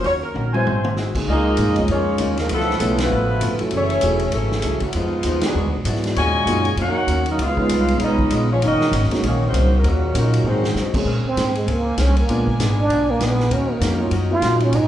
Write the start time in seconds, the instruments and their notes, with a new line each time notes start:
0.04 upright bass D#2, hollow-body jazz guitar D#3 C#4 F#4 A#4, saxophone section C#5, open hi-hat
0.23 saxophone section A#4
0.34 upright bass A#1, hollow-body jazz guitar D#3 C#4 F#4 A#4, mid tom
0.53 trombone section E3 F#3 C4, grand piano F#3 B3 C4 E4, trumpet section F#4 C5 E5 G#5, saxophone section C5, high tom
0.64 upright bass G#1, hollow-body jazz guitar G#3 E4 F#4 C5, high tom
0.84 mid tom
0.96 hollow-body jazz guitar G#3 E4 F#4 C5, snare
1.15 grand piano C#3 G#3 A#3 D#4 G#4, muted upright bass stroke, kick, crash
1.27 upright bass C#2, hollow-body jazz guitar C#3 A#3 D#4 F4, trombone section A#3, saxophone section A#3 F4 G#4 D#5
1.31 trombone section G#3 D#4
1.57 upright bass G#2, hollow-body jazz guitar C#3 A#3 D#4, hi-hat pedal, ride
1.61 hollow-body jazz guitar F4
1.68 upright bass F2
1.76 upright bass C#2, grand piano F3 G#3 A#3 C#4 D#4, ride
1.88 upright bass F2, hollow-body jazz guitar C#3 A#3 D#4 F4, trombone section G#3 A#3 C#4, saxophone section A#3 G#4 C#5, ride
1.92 saxophone section F4
2.18 upright bass D#2, hollow-body jazz guitar C#3 A#3 D#4 F4, hi-hat pedal, ride
2.37 trombone section A#2 F3 A#3, saxophone section G#3 D#4 F4 A#4, snare, ride
2.49 upright bass C#2, trombone section B2 F3 A3, hollow-body jazz guitar C#3 A3 B3 F4, saxophone section B3 A4, ride
2.53 saxophone section F3 E4
2.60 snare
2.70 snare
2.79 upright bass B1, hollow-body jazz guitar C#3 A3 B3 F4, grand piano F3 A3 B3 C#4 E4, hi-hat pedal, ride
2.98 trombone section B2 F3 B3, saxophone section A3 E4, snare, ride
3.02 saxophone section F4 B4
3.11 upright bass A1, hollow-body jazz guitar C#3 A3 B3 F4
3.40 upright bass G1, hollow-body jazz guitar C#3 A3 B3 F4, hi-hat pedal, ride
3.59 grand piano F#3 A3 C#4 E4 A4, muted upright bass stroke, ride
3.71 upright bass F#1, trombone section E3 A3 C#4, hollow-body jazz guitar F#3 A3 E4, ride
3.75 saxophone section A3 E4 G#4 C#5, hollow-body jazz guitar G#4
3.90 ride
4.01 upright bass E1, grand piano F#3 A3 C#4 E4 G#4, hollow-body jazz guitar F#3, hi-hat pedal, ride
4.05 hollow-body jazz guitar A3 E4 G#4
4.19 ride
4.32 upright bass G#1, trombone section C#3 E3 A3, saxophone section E3 C#4 G#4 A4, hollow-body jazz guitar F#3 A3 E4, ride
4.36 hollow-body jazz guitar G#4
4.51 snare
4.62 upright bass C#2, hollow-body jazz guitar F#3 A3 E4, hi-hat pedal, ride
4.66 hollow-body jazz guitar G#4
4.80 trombone section A2 C#3 F#3, saxophone section E3 A3 C#4 F#4, muted upright bass stroke, kick, ride
4.93 upright bass F2, trombone section G#2 B2 F3, hollow-body jazz guitar F3 B3, saxophone section G#3 B3 D#4 F4, ride
4.97 hollow-body jazz guitar D#4 G#4
5.23 upright bass D#2, grand piano F3 G#3 B3 D#4 F4, hollow-body jazz guitar F3 B3 D#4, hi-hat pedal, ride
5.28 hollow-body jazz guitar G#4
5.41 trombone section B2 D3 G#3, saxophone section F#3 B3 D4 G#4, snare, ride
5.54 upright bass E2, hollow-body jazz guitar E3 G#3 D4 F#4
5.64 upright bass D2
5.75 upright bass B1
5.85 upright bass G#2, hollow-body jazz guitar E3 G#3 D4 F#4, grand piano F#3 G#3 B3 D4 E4, hi-hat pedal, ride
5.95 snare
6.04 snare, ride
6.16 upright bass D#2, trombone section A#2 C#3 G#3, hollow-body jazz guitar D#3 A#3 C#4 F#4, saxophone section F#4 C#5 D#5 G#5, ride
6.46 upright bass F#2, hollow-body jazz guitar D#3 A#3 C#4 F#4, grand piano F#3 A#3 C#4 D#4 F4, hi-hat pedal, ride
6.65 ride
6.76 upright bass F2, hollow-body jazz guitar D#3 A#3 C#4, trombone section A#3 C#4 F#4, ride
6.81 saxophone section D#4 A#4 C#5 F#5, hollow-body jazz guitar F#4
7.07 upright bass D#2, hollow-body jazz guitar D#3 A#3 C#4 F#4, hi-hat pedal, ride
7.26 trombone section F#3 A#3 D#4, ride
7.31 saxophone section C#4 F#4 A#4 D#5
7.38 upright bass C#2, hollow-body jazz guitar C#3 G#3 B3 F4, trombone section G#3 B3 F4, ride
7.42 saxophone section C#4 G#4 B4 F5
7.57 grand piano G#3 B3 C#4 D#4 F4, kick
7.69 upright bass C2, hollow-body jazz guitar C#3 G#3 B3 F4, hi-hat pedal, ride
7.88 ride
8.00 upright bass B1, hollow-body jazz guitar C#3 G#3 B3, trombone section G#3 B3 D#4, saxophone section C#4 G#4 B4 D#5, ride
8.04 hollow-body jazz guitar F4
8.19 kick
8.30 upright bass A#1, hollow-body jazz guitar C#3 G#3 B3 F4, hi-hat pedal, ride
8.51 trombone section F3 G#3 C#4, saxophone section B3 F4 G#4 C#5
8.62 upright bass F#1, hollow-body jazz guitar F#2 D#3 A#3 C#4, trombone section D#3 A#3 D#4, ride
8.66 saxophone section C#4 F#4 A#4 D#5
8.81 muted upright bass stroke, snare
8.91 upright bass G#1, hollow-body jazz guitar F#2 D#3 A#3 C#4, hi-hat pedal, ride
9.04 snare
9.11 grand piano G#3 A#3 C#4 D#4 F#4, muted upright bass stroke, snare, ride
9.22 upright bass A#1, hollow-body jazz guitar F#2 D#3 A#3 C#4, trombone section D#3 A#3 C#4, ride
9.27 saxophone section A#3 D#4 F#4 C#5
9.45 trombone section C#3 D#3 C4, saxophone section A#3 D#4 F#4 C5
9.52 upright bass C2, hollow-body jazz guitar F#2 D#3 A#3 C#4, hi-hat pedal, ride
9.76 trombone section C#3 D#3 A#3, saxophone section F#3 C#4 D#4 A#4
9.83 upright bass D#2, hollow-body jazz guitar D#3 A#3 C#4 F#4, ride
9.87 trombone section A#2 C#3 F#3, saxophone section D#3 A#3 C#4 F#4
10.14 upright bass A#2, hollow-body jazz guitar D#3 A#3 C#4 F#4, grand piano F#3 A#3 C#4 D#4 F4, saxophone section F#3 C#4 D#4, hi-hat pedal, ride
10.18 trombone section C#3 F#3 A#3, saxophone section A#4
10.34 ride
10.43 upright bass G#2, hollow-body jazz guitar G#2 F#3 C4 D#4, grand piano G#3 A#3 C4 D#4 G#4
10.48 trombone section D#3 F#3 C4, saxophone section G#3 D#4 F#4 C5
10.64 snare
10.75 hollow-body jazz guitar G#2 F#3 C4 D#4, upright bass C3, snare, hi-hat pedal
10.94 grand piano G#3 A#3 C4 C#4 G#4, muted upright bass stroke, kick, crash
11.05 upright bass A#2, hollow-body jazz guitar A#3 C#4 G#4, saxophone section C4 A#4 C5 G#5
11.09 hollow-body jazz guitar C5
11.24 trombone C4, muted upright bass stroke
11.36 upright bass G#2, hollow-body jazz guitar A#3 C#4 G#4 C5, snare, hi-hat pedal, ride
11.55 trombone G#3, ride
11.66 upright bass C#2, hollow-body jazz guitar A#3 C#4 G#4 C5, ride
11.72 trombone A#3
11.97 upright bass C2, hollow-body jazz guitar A#3 C#4 G#4 C5, snare, hi-hat pedal, ride
12.02 trombone C#4
12.17 trombone A#3, ride
12.28 hollow-body jazz guitar A#2 G#3 B3 D4, grand piano G#3 A#3 B3 D4 F4, saxophone section D4 B4, ride
12.47 kick
12.59 upright bass G#1, hollow-body jazz guitar A#2 G#3 B3 D4, snare, hi-hat pedal, ride
12.80 trombone D4
12.89 upright bass B1, hollow-body jazz guitar A#2 G#3 B3 D4, ride
13.11 trombone A#3
13.19 upright bass A#1, hollow-body jazz guitar A#2 G#3 B3 D4, trombone B3, snare, hi-hat pedal, ride
13.40 snare
13.50 upright bass D#2, hollow-body jazz guitar D#3 A#3 C#4, saxophone section D#4 C#5 D#5, ride
13.54 trombone C#4, hollow-body jazz guitar F#4
13.72 trombone A#3
13.80 upright bass F2, hollow-body jazz guitar D#3 A#3 C#4 F#4, snare, hi-hat pedal, ride
14.00 grand piano F#3 A#3 C#4 D#4 F4
14.11 upright bass F#2, hollow-body jazz guitar D#3 A#3 C#4 F#4, ride
14.31 grand piano F#3 A#3 C#4 D#4 F4, trombone F4
14.42 upright bass A#2, hollow-body jazz guitar D#3 A#3 C#4 F#4, snare, hi-hat pedal, ride
14.60 trombone C#4, ride
14.72 upright bass G#2, hollow-body jazz guitar G#3 B3 F#4 A#4, trombone D#4, saxophone section F#4 B4 G#5, ride